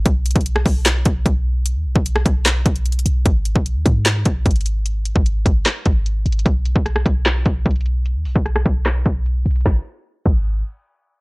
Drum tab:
CC |------------------------------------------------------------------------------------------------|------------------------------------------------------------------------------------------------|------------------------------------------------------------------------------------------------|------------------------------------------------------------------------------------------------|
HH |x-----------x--x--x--x--x-----------o-----------x-----------x-----------x-----------------------|x-----------------------x-----------x-----------x-----------x-----x-----x---x---x---x-----------|x-----------x-----------x-----------x-----------x-----------x-----------x--x--x--x--x-----------|x-----------x-----------x-----------x-----------x-----------x-----------x-----------x---x---x---|
CP |------------------------------------------------x-----------------------------------------------|------------------------------------------------x-----------------------------------------------|------------------------------------------------x-----------------------------------------------|------------------------------------------------x-----------------------------------------------|
SD |------------------------------r-----------------o-----------------------------------------------|------------------------------r-----------------o-----------------------------------------------|------------------------------------------------o-----------------------------------------------|------------------------------------------------o-----------------------------------------------|
BD |o-----------------o-----------------o-----------------------o-----------o-----------------------|------------------o-----------------o-----------------------o-----------------------------------|o-----------------o-----------------o-----------------------o-----------o-----------------------|------------------o-----------------o-----------------------o-----------------------------------|

CC |------------------------------------------------------------------------------------------------|------------------------------------------------------------------------------------------------|------------------------------------x-----------------------------------------------------------|
HH |x-----------x-----------x-----------x-----------x-----------x-----------x--x--x--x--x-----------|x-----------o-----------x-----------x-----------x-----------x-----------x-----------x--x--x--x--|------------------------------------------------------------------------------------------------|
CP |------------------------------------------------x-----------------------------------------------|------------------------------------------------x-----------------------------------------------|------------------------------------------------------------------------------------------------|
SD |------------------------r-----r-----------------o-----------------------------------------------|------------------------r-----r-----------------o-----------------------------------------------|o-----------------------------------------------------------------------------------------------|
BD |o-----------------o-----------------o-----------------------o-----------o-----------------------|------------------o-----------------o-----------------------o-----------------------------------|o-----------------------------------o-----------------------------------------------------------|